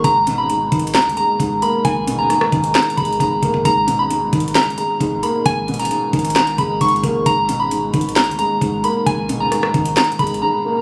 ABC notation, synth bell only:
X:1
M:4/4
L:1/16
Q:1/4=133
K:G#m
V:1 name="Synth bell"
a3 b4- b a2 a4 b2 | g3 a4- a a2 b2 a4 | a3 b4- b a2 a4 b2 | g3 a4- a a2 b2 c'2 z2 |
a3 b4- b a2 a4 b2 | g3 a4- a a2 b2 a4 |]